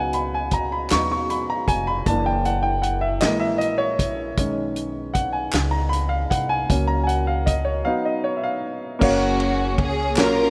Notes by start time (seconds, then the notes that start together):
Already playing: C#2 F#3 G#3 B3 C#4 D#4 F#4 F#5 G#5
0.13 B5, closed hi-hat
0.34 G#5
0.51 A#5, kick, closed hi-hat
0.72 B5
0.90 D#2 F#3 C#6, snare, clap, closed hi-hat
0.94 B3 D#4
1.12 C#6
1.30 B5, closed hi-hat
1.50 A#5
1.67 F1 G#5, kick, closed hi-hat
1.87 B5
2.06 F#1 E3 F#3 A#3 D4 E4 A5, kick, closed hi-hat
2.26 G5
2.45 F#5, closed hi-hat
2.63 G5
2.82 F#5, closed hi-hat
3.01 E5
3.21 A#1 E3 G#3 C#4 D#5, snare, clap, closed hi-hat
3.25 A#3
3.40 E5
3.58 D#5, closed hi-hat
3.78 C#5
3.99 A#1, kick, closed hi-hat
4.37 B1 D#3 G#3 B3 C#4 D#4, kick, closed hi-hat
4.76 closed hi-hat
5.14 F#5, kick, closed hi-hat
5.33 G#5
5.53 C#2, snare, clap, closed hi-hat
5.71 A#5
5.89 B5, closed hi-hat
6.09 F5
6.30 C2 F#5, kick, closed hi-hat
6.49 G#5
6.70 C#2 F#3 A#3 C#4 F#4, kick, closed hi-hat
6.88 A#5
7.04 F#5 G#5
7.09 closed hi-hat
7.27 F5
7.46 D#5, kick, closed hi-hat
7.65 C#5
7.85 F#3 B3 D#4 F5
8.05 D#5
8.24 C#5
8.37 E5
8.44 F5
8.99 F#1 A#3 C#4 F#4 F5, kick, crash
9.03 A#3 C#4 F#4 C#5
9.40 ride bell
9.78 C#2, kick, ride bell
9.82 G#4
10.16 A#1 F#3 A#3 C#4 F4, snare, clap, ride bell
10.20 A#4 C#5